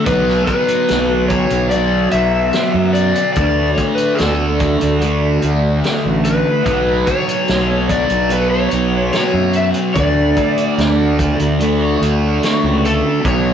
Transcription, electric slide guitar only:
0.06 B4
0.46 B4
1.28 C#5
1.70 D5
2.12 E5
2.93 D5
3.33 D5
3.74 C#5
3.95 B4
4.15 A4
6.25 B4
7.07 C#5
7.90 D5
8.32 B4
8.50 C#5
9.13 C#5
9.56 E5
9.94 D5
11.80 C#5
12.86 A4
13.28 C#5

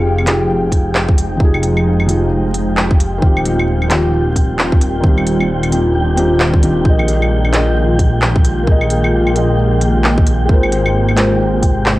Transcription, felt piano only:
Already playing: F3 D#4 G4 G#4
0.25 F3 D#4 G4 G#4
1.37 F3 D#4
1.42 G4 G#4
2.06 F3 D#4 G4
2.11 G#4
3.18 D#3 C4
3.23 F4 G4
3.88 D#3 C4 F4
3.92 G4
5.00 D#3 C4
5.06 F4 G4
5.70 D#3 C4 F4
5.74 G4
6.15 D#3 C4 F4 G4
6.60 D#3 C4 F4
6.64 G4
6.81 A#3 G#4
6.90 D#5
7.52 A#3 G#4 D#5
8.63 A#3 G#4
8.71 D#5
9.33 A#3 G#4
9.38 D#5
10.46 G#3 F4
10.51 A#4 C5
11.15 G#3 F4 A#4
11.19 C5

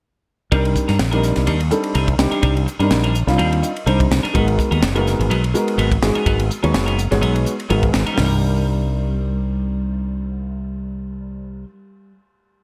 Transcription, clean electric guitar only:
0.52 G3 D4 D#4 A#4
0.65 muted clean electric guitar stroke
0.75 muted clean electric guitar stroke
0.88 D4 D#4 A#4
0.99 muted clean electric guitar stroke
1.11 D4 D#4 A#4
1.36 muted clean electric guitar stroke
1.47 G3 D4 D#4 A#4
1.60 muted clean electric guitar stroke
1.71 muted clean electric guitar stroke
1.94 G3 D4 D#4 A#4
2.07 muted clean electric guitar stroke
2.18 muted clean electric guitar stroke
2.31 D4 D#4 A#4
2.42 G3 D4 D#4 A#4
2.55 muted clean electric guitar stroke
2.66 muted clean electric guitar stroke
2.79 D4 D#4 A#4
2.91 muted clean electric guitar stroke
3.04 D4 D#4 A#4
3.28 muted clean electric guitar stroke
3.38 G3 D4 D#4 A#4
3.51 muted clean electric guitar stroke
3.62 muted clean electric guitar stroke
3.86 G3 D4 D#4 A#4
3.99 muted clean electric guitar stroke
4.11 muted clean electric guitar stroke
4.23 D4 D#4 A#4
4.34 F#3 B3 D#4 A#4
4.47 muted clean electric guitar stroke
4.59 muted clean electric guitar stroke
4.71 B3 D#4 A#4
4.82 muted clean electric guitar stroke
4.96 B3 D#4 A#4
5.20 muted clean electric guitar stroke
5.30 F#3 B3 D#4 A#4
5.43 muted clean electric guitar stroke
5.54 muted clean electric guitar stroke
5.78 F#3 B3 D#4 A#4
5.92 muted clean electric guitar stroke
6.02 muted clean electric guitar stroke
6.15 B3 D#4 A#4
6.26 F#3 B3 D#4 A#4
6.40 muted clean electric guitar stroke
6.50 muted clean electric guitar stroke
6.63 B3 D#4 A#4
6.73 muted clean electric guitar stroke
6.86 B3 D#4 A#4
7.11 muted clean electric guitar stroke
7.21 F#3 B3 D#4 A#4
7.35 muted clean electric guitar stroke
7.45 muted clean electric guitar stroke
7.69 F#3 B3 D#4 A#4
7.83 muted clean electric guitar stroke
7.93 muted clean electric guitar stroke
8.07 B3 D#4 A#4
8.14 G3
8.25 A#4

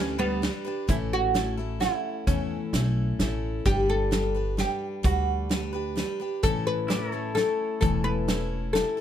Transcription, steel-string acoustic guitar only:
Already playing: G3 D4
0.00 G4 B4
0.18 D4 G4 B4
0.42 G3 D4 G4 B4
0.65 D4 G4 B4
0.88 A2 E3 A3 C#4 E4 A4
1.34 A3 C#4 E4 A4
1.57 A3 C#4 E4 A4
1.80 A3 C#4 E4 A4
2.28 A2 E3 A3 C#4 E4 A4
2.73 A3 C#4 E4 A4
3.20 A3 C#4 E4 A4
3.65 G3 D4 G4 B4
4.11 G3 D4 G4 B4
4.34 D4 G4 B4
4.57 G3 D4 G4 B4
5.03 G3 D4 B4
5.49 G3 D4 G4 B4
5.73 D4 G4 B4
5.96 G3 D4 G4 B4
6.20 D4 G4 B4
6.43 A2 E3 A3 C#4 E4 A4
6.88 A3 C#4 E4 A4
7.12 A3 C#4 E4 A4
7.35 A3 C#4 E4 A4
7.81 A2 E3 A3 C#4 E4 A4
8.28 A3 C#4 E4 A4
8.74 A3 C#4 E4 A4
8.97 A4

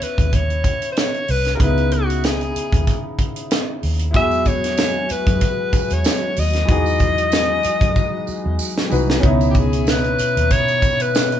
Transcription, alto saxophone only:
0.03 B4
0.35 C#5
0.92 C5
0.99 C#5
1.31 B4
1.55 A#4
1.62 B4
1.93 F#4
2.25 G#4
4.16 E5
4.47 C#5
5.12 B4
5.93 C#5
6.39 D#5
9.50 G4
9.57 G#4
9.89 B4
10.52 C#5
11.02 B4

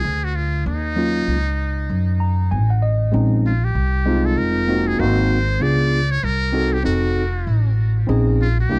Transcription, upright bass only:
0.04 D2
0.66 D#2
1.28 C#2
1.90 F#2
2.52 A1
3.14 A#1
3.75 C2
4.38 F1
4.99 G#1
5.61 C#2
6.23 C2
6.85 F1
7.47 A1
8.09 A#1
8.70 C2

